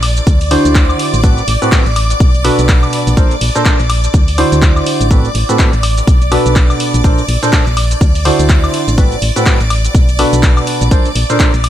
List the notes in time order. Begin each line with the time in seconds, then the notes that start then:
Already playing: A#1 D5 D6
0.03 open hi-hat, high woodblock
0.17 closed hi-hat, shaker
0.27 D2, kick, closed hi-hat, shaker
0.41 open hi-hat, shaker
0.51 D3 D4 E4 F#4 C5, open hi-hat, high woodblock
0.65 D2, closed hi-hat, shaker
0.75 kick, clap, closed hi-hat, shaker
0.89 high woodblock, shaker
0.99 open hi-hat
1.14 A1, closed hi-hat, shaker
1.24 A2 C4 F#4 A4 B4, kick, closed hi-hat, shaker
1.38 closed hi-hat, shaker
1.48 A1, open hi-hat
1.62 A2 C4 F#4 A4 B4, closed hi-hat, shaker
1.72 A2 C4 F#4 B4, kick, clap, closed hi-hat, shaker
1.86 A1, closed hi-hat, shaker
1.96 open hi-hat, high woodblock
2.10 closed hi-hat, shaker
2.20 B1, kick, closed hi-hat, shaker
2.35 closed hi-hat, shaker
2.45 B2 D4 F#4 A4 B4, open hi-hat, high woodblock
2.59 B1, closed hi-hat, shaker
2.69 kick, clap, closed hi-hat, shaker
2.83 high woodblock, shaker
2.93 open hi-hat
3.07 A#1, closed hi-hat, shaker
3.17 A#2 D4 A4 A#4 C5, kick, closed hi-hat, shaker
3.31 closed hi-hat, shaker
3.41 A#1, open hi-hat
3.55 A#2 D4 A4 A#4 C5, closed hi-hat, shaker
3.65 A#2 D4 A4 A#4 C5, kick, clap, closed hi-hat, shaker
3.80 A#1, closed hi-hat, shaker
3.90 open hi-hat, high woodblock
4.04 closed hi-hat, shaker
4.14 D2, kick, closed hi-hat, shaker
4.28 open hi-hat, shaker
4.38 D3 D4 E4 F#4 C5, open hi-hat, high woodblock
4.52 D2, closed hi-hat, shaker
4.62 kick, clap, closed hi-hat, shaker
4.76 high woodblock, shaker
4.86 open hi-hat
5.01 A1, closed hi-hat, shaker
5.11 A2 C4 F#4 A4 B4 D5 D6, kick, closed hi-hat, shaker
5.25 closed hi-hat, shaker
5.35 A1, open hi-hat
5.49 A2 C4 F#4 A4 B4, closed hi-hat, shaker
5.59 kick, clap, closed hi-hat, shaker
5.73 A1, closed hi-hat, shaker
5.83 open hi-hat, high woodblock
5.97 closed hi-hat, shaker
6.07 B1, kick, closed hi-hat, shaker
6.22 closed hi-hat, shaker
6.32 B2 D4 F#4 A4 B4, open hi-hat, high woodblock
6.46 B1, closed hi-hat, shaker
6.56 kick, clap, closed hi-hat, shaker
6.70 high woodblock, shaker
6.80 open hi-hat
6.94 A#1, closed hi-hat, shaker
7.04 A#2 D4 A4 A#4 C5, kick, closed hi-hat, shaker
7.18 closed hi-hat, shaker
7.28 A#1, open hi-hat
7.43 A#2 D4 A4 A#4 C5, closed hi-hat, shaker
7.53 D4 A4 C5, kick, clap, closed hi-hat, shaker
7.67 A#1, closed hi-hat, shaker
7.77 open hi-hat, high woodblock
7.91 closed hi-hat, shaker
8.01 D2, kick, closed hi-hat, shaker
8.15 open hi-hat, shaker
8.25 D3 D4 E4 F#4 C5, open hi-hat, high woodblock
8.39 D2, closed hi-hat, shaker
8.49 kick, clap, closed hi-hat, shaker
8.64 high woodblock, shaker
8.74 open hi-hat
8.88 A1, closed hi-hat, shaker
8.98 A2 C4 F#4 A4 B4, kick, closed hi-hat, shaker
9.12 closed hi-hat, shaker
9.22 A1, open hi-hat
9.36 A2 C4 F#4 A4 B4, closed hi-hat, shaker
9.46 C4 F#4 B4, kick, clap, closed hi-hat, shaker
9.60 A1, closed hi-hat, shaker
9.70 open hi-hat, high woodblock
9.85 closed hi-hat, shaker
9.95 B1, kick, closed hi-hat, shaker
10.09 closed hi-hat, shaker
10.19 B2 D4 F#4 A4 B4, open hi-hat, high woodblock
10.33 B1, closed hi-hat, shaker
10.43 kick, clap, closed hi-hat, shaker
10.57 high woodblock, shaker
10.67 open hi-hat
10.81 A#1, closed hi-hat, shaker
10.91 A#2 D4 A4 A#4 C5, kick, closed hi-hat, shaker
11.06 closed hi-hat, shaker
11.15 A#1, open hi-hat
11.30 A#2 D4 A4 A#4 C5, closed hi-hat, shaker
11.40 kick, clap, closed hi-hat, shaker
11.54 A#1, closed hi-hat, shaker
11.64 open hi-hat, high woodblock